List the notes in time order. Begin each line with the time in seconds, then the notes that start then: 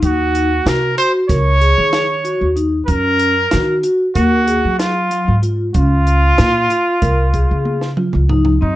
0.02 D#2 D#4 F#4, kick, closed hi-hat
0.35 closed hi-hat
0.66 C3 F#4 A#4, snare, closed hi-hat
0.97 F#4 C5, closed hi-hat
1.28 C#2 A#4 C#5, kick, snare, closed hi-hat
1.61 G#4, closed hi-hat
1.78 D#3
1.93 snare, closed hi-hat
2.24 F#4, closed hi-hat
2.41 D#2
2.56 D#4, closed hi-hat
2.86 F#2 C#4 A#4, kick, closed hi-hat
3.19 closed hi-hat
3.51 D#3 F#4, snare, closed hi-hat
3.83 F#4, closed hi-hat
4.15 D#2 F#4 A#4, kick, closed hi-hat
4.47 G#4, closed hi-hat
4.65 F#3
4.79 F4, snare, closed hi-hat
5.11 F#3, closed hi-hat
5.28 G#2
5.43 F4, closed hi-hat
5.74 C#2 C#4 F4, kick, closed hi-hat
6.07 closed hi-hat
6.38 A#2 F4, snare, closed hi-hat
6.70 F4, closed hi-hat
7.02 C2 A#4, kick, closed hi-hat
7.34 G#4, kick, closed hi-hat
7.51 C#3
7.65 high tom
7.81 snare
7.97 F4, mid tom
8.13 C#2, mid tom
8.29 D#4, floor tom
8.45 floor tom
8.61 F#2 C4 D#4